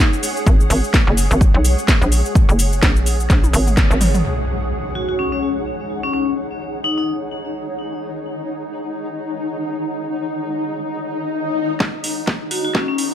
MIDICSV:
0, 0, Header, 1, 8, 480
1, 0, Start_track
1, 0, Key_signature, -6, "minor"
1, 0, Tempo, 472441
1, 471, Time_signature, 4, 2, 24, 8
1, 13350, End_track
2, 0, Start_track
2, 0, Title_t, "Ambient pad"
2, 0, Program_c, 0, 92
2, 0, Note_on_c, 0, 68, 91
2, 0, Note_on_c, 0, 73, 85
2, 0, Note_on_c, 0, 78, 85
2, 4312, Note_on_c, 0, 63, 76
2, 11991, Note_off_c, 0, 78, 0
2, 11992, Note_off_c, 0, 68, 0
2, 11992, Note_off_c, 0, 73, 0
2, 12129, Note_on_c, 0, 68, 76
2, 12171, Note_on_c, 0, 78, 75
2, 12351, Note_on_c, 0, 73, 75
2, 13350, Note_off_c, 0, 63, 0
2, 13350, Note_off_c, 0, 68, 0
2, 13350, Note_off_c, 0, 73, 0
2, 13350, Note_off_c, 0, 78, 0
2, 13350, End_track
3, 0, Start_track
3, 0, Title_t, "Vibraphone"
3, 0, Program_c, 1, 11
3, 0, Note_on_c, 1, 63, 88
3, 129, Note_off_c, 1, 63, 0
3, 5033, Note_on_c, 1, 66, 82
3, 5120, Note_off_c, 1, 66, 0
3, 5168, Note_on_c, 1, 66, 73
3, 5234, Note_off_c, 1, 66, 0
3, 5273, Note_on_c, 1, 61, 79
3, 5360, Note_off_c, 1, 61, 0
3, 5409, Note_on_c, 1, 61, 75
3, 5475, Note_off_c, 1, 61, 0
3, 6130, Note_on_c, 1, 61, 83
3, 6195, Note_off_c, 1, 61, 0
3, 6232, Note_on_c, 1, 61, 73
3, 6320, Note_off_c, 1, 61, 0
3, 6951, Note_on_c, 1, 63, 83
3, 7039, Note_off_c, 1, 63, 0
3, 7088, Note_on_c, 1, 63, 76
3, 7154, Note_off_c, 1, 63, 0
3, 12711, Note_on_c, 1, 66, 85
3, 12799, Note_off_c, 1, 66, 0
3, 12850, Note_on_c, 1, 66, 76
3, 12915, Note_off_c, 1, 66, 0
3, 12954, Note_on_c, 1, 61, 82
3, 13041, Note_off_c, 1, 61, 0
3, 13088, Note_on_c, 1, 61, 74
3, 13154, Note_off_c, 1, 61, 0
3, 13350, End_track
4, 0, Start_track
4, 0, Title_t, "FM bass"
4, 0, Program_c, 2, 39
4, 473, Note_on_c, 2, 32, 100
4, 696, Note_off_c, 2, 32, 0
4, 713, Note_on_c, 2, 32, 97
4, 828, Note_off_c, 2, 32, 0
4, 1090, Note_on_c, 2, 30, 102
4, 1307, Note_off_c, 2, 30, 0
4, 1330, Note_on_c, 2, 32, 101
4, 1547, Note_off_c, 2, 32, 0
4, 1569, Note_on_c, 2, 35, 97
4, 1787, Note_off_c, 2, 35, 0
4, 2048, Note_on_c, 2, 34, 95
4, 2267, Note_off_c, 2, 34, 0
4, 2528, Note_on_c, 2, 30, 97
4, 2855, Note_off_c, 2, 30, 0
4, 2871, Note_on_c, 2, 34, 98
4, 3335, Note_off_c, 2, 34, 0
4, 3352, Note_on_c, 2, 34, 98
4, 3575, Note_off_c, 2, 34, 0
4, 3591, Note_on_c, 2, 32, 98
4, 3947, Note_off_c, 2, 32, 0
4, 3969, Note_on_c, 2, 32, 94
4, 4295, Note_off_c, 2, 32, 0
4, 13350, End_track
5, 0, Start_track
5, 0, Title_t, "Impact"
5, 0, Program_c, 3, 103
5, 4313, Note_on_c, 3, 60, 70
5, 6232, Note_off_c, 3, 60, 0
5, 13350, End_track
6, 0, Start_track
6, 0, Title_t, "Riser"
6, 0, Program_c, 4, 103
6, 11992, Note_on_c, 4, 60, 79
6, 13350, Note_off_c, 4, 60, 0
6, 13350, End_track
7, 0, Start_track
7, 0, Title_t, "Swell"
7, 0, Program_c, 5, 103
7, 11032, Note_on_c, 5, 60, 74
7, 11992, Note_off_c, 5, 60, 0
7, 13350, End_track
8, 0, Start_track
8, 0, Title_t, "Drums"
8, 0, Note_on_c, 9, 69, 44
8, 98, Note_off_c, 9, 69, 0
8, 134, Note_on_c, 9, 69, 31
8, 232, Note_on_c, 9, 46, 98
8, 235, Note_off_c, 9, 69, 0
8, 236, Note_on_c, 9, 69, 75
8, 334, Note_off_c, 9, 46, 0
8, 338, Note_off_c, 9, 69, 0
8, 374, Note_on_c, 9, 69, 35
8, 473, Note_on_c, 9, 36, 119
8, 475, Note_off_c, 9, 69, 0
8, 476, Note_on_c, 9, 69, 47
8, 574, Note_off_c, 9, 36, 0
8, 578, Note_off_c, 9, 69, 0
8, 615, Note_on_c, 9, 69, 32
8, 713, Note_on_c, 9, 46, 104
8, 716, Note_off_c, 9, 69, 0
8, 717, Note_on_c, 9, 69, 84
8, 815, Note_off_c, 9, 46, 0
8, 819, Note_off_c, 9, 69, 0
8, 854, Note_on_c, 9, 69, 34
8, 952, Note_on_c, 9, 36, 106
8, 955, Note_off_c, 9, 69, 0
8, 955, Note_on_c, 9, 38, 118
8, 956, Note_on_c, 9, 69, 47
8, 1054, Note_off_c, 9, 36, 0
8, 1057, Note_off_c, 9, 38, 0
8, 1058, Note_off_c, 9, 69, 0
8, 1192, Note_on_c, 9, 46, 102
8, 1196, Note_on_c, 9, 69, 84
8, 1294, Note_off_c, 9, 46, 0
8, 1298, Note_off_c, 9, 69, 0
8, 1333, Note_on_c, 9, 69, 36
8, 1432, Note_on_c, 9, 36, 111
8, 1435, Note_off_c, 9, 69, 0
8, 1436, Note_on_c, 9, 69, 45
8, 1534, Note_off_c, 9, 36, 0
8, 1538, Note_off_c, 9, 69, 0
8, 1672, Note_on_c, 9, 46, 98
8, 1675, Note_on_c, 9, 69, 78
8, 1773, Note_off_c, 9, 46, 0
8, 1777, Note_off_c, 9, 69, 0
8, 1813, Note_on_c, 9, 69, 35
8, 1912, Note_on_c, 9, 36, 96
8, 1915, Note_off_c, 9, 69, 0
8, 1915, Note_on_c, 9, 38, 110
8, 1916, Note_on_c, 9, 69, 46
8, 2014, Note_off_c, 9, 36, 0
8, 2016, Note_off_c, 9, 38, 0
8, 2018, Note_off_c, 9, 69, 0
8, 2053, Note_on_c, 9, 69, 31
8, 2152, Note_on_c, 9, 46, 99
8, 2154, Note_off_c, 9, 69, 0
8, 2156, Note_on_c, 9, 69, 77
8, 2253, Note_off_c, 9, 46, 0
8, 2257, Note_off_c, 9, 69, 0
8, 2293, Note_on_c, 9, 69, 36
8, 2392, Note_on_c, 9, 36, 118
8, 2395, Note_off_c, 9, 69, 0
8, 2396, Note_on_c, 9, 69, 49
8, 2494, Note_off_c, 9, 36, 0
8, 2497, Note_off_c, 9, 69, 0
8, 2532, Note_on_c, 9, 69, 32
8, 2630, Note_on_c, 9, 46, 110
8, 2634, Note_off_c, 9, 69, 0
8, 2634, Note_on_c, 9, 69, 87
8, 2732, Note_off_c, 9, 46, 0
8, 2736, Note_off_c, 9, 69, 0
8, 2771, Note_on_c, 9, 69, 35
8, 2872, Note_on_c, 9, 36, 104
8, 2872, Note_on_c, 9, 38, 122
8, 2873, Note_off_c, 9, 69, 0
8, 2873, Note_on_c, 9, 69, 48
8, 2973, Note_off_c, 9, 36, 0
8, 2974, Note_off_c, 9, 38, 0
8, 2975, Note_off_c, 9, 69, 0
8, 3012, Note_on_c, 9, 69, 33
8, 3111, Note_on_c, 9, 46, 104
8, 3113, Note_off_c, 9, 69, 0
8, 3115, Note_on_c, 9, 69, 83
8, 3213, Note_off_c, 9, 46, 0
8, 3217, Note_off_c, 9, 69, 0
8, 3253, Note_on_c, 9, 69, 37
8, 3352, Note_on_c, 9, 36, 118
8, 3352, Note_on_c, 9, 38, 61
8, 3354, Note_off_c, 9, 69, 0
8, 3356, Note_on_c, 9, 69, 46
8, 3453, Note_off_c, 9, 36, 0
8, 3453, Note_off_c, 9, 38, 0
8, 3457, Note_off_c, 9, 69, 0
8, 3490, Note_on_c, 9, 48, 61
8, 3494, Note_on_c, 9, 69, 35
8, 3591, Note_off_c, 9, 48, 0
8, 3592, Note_on_c, 9, 46, 98
8, 3595, Note_off_c, 9, 69, 0
8, 3596, Note_on_c, 9, 69, 85
8, 3694, Note_off_c, 9, 46, 0
8, 3697, Note_off_c, 9, 69, 0
8, 3730, Note_on_c, 9, 47, 68
8, 3733, Note_on_c, 9, 69, 36
8, 3831, Note_off_c, 9, 47, 0
8, 3832, Note_on_c, 9, 36, 96
8, 3832, Note_on_c, 9, 38, 86
8, 3835, Note_off_c, 9, 69, 0
8, 3836, Note_on_c, 9, 69, 45
8, 3933, Note_off_c, 9, 36, 0
8, 3934, Note_off_c, 9, 38, 0
8, 3938, Note_off_c, 9, 69, 0
8, 3974, Note_on_c, 9, 69, 34
8, 4072, Note_on_c, 9, 45, 97
8, 4072, Note_on_c, 9, 46, 99
8, 4076, Note_off_c, 9, 69, 0
8, 4076, Note_on_c, 9, 69, 77
8, 4174, Note_off_c, 9, 45, 0
8, 4174, Note_off_c, 9, 46, 0
8, 4177, Note_off_c, 9, 69, 0
8, 4209, Note_on_c, 9, 45, 92
8, 4213, Note_on_c, 9, 69, 37
8, 4311, Note_off_c, 9, 45, 0
8, 4315, Note_off_c, 9, 69, 0
8, 11991, Note_on_c, 9, 38, 51
8, 11992, Note_on_c, 9, 36, 119
8, 12093, Note_off_c, 9, 36, 0
8, 12093, Note_off_c, 9, 38, 0
8, 12231, Note_on_c, 9, 46, 109
8, 12333, Note_off_c, 9, 46, 0
8, 12470, Note_on_c, 9, 38, 48
8, 12472, Note_on_c, 9, 36, 104
8, 12572, Note_off_c, 9, 38, 0
8, 12573, Note_off_c, 9, 36, 0
8, 12710, Note_on_c, 9, 46, 103
8, 12812, Note_off_c, 9, 46, 0
8, 12951, Note_on_c, 9, 38, 48
8, 12952, Note_on_c, 9, 36, 114
8, 13052, Note_off_c, 9, 38, 0
8, 13054, Note_off_c, 9, 36, 0
8, 13191, Note_on_c, 9, 46, 97
8, 13292, Note_off_c, 9, 46, 0
8, 13350, End_track
0, 0, End_of_file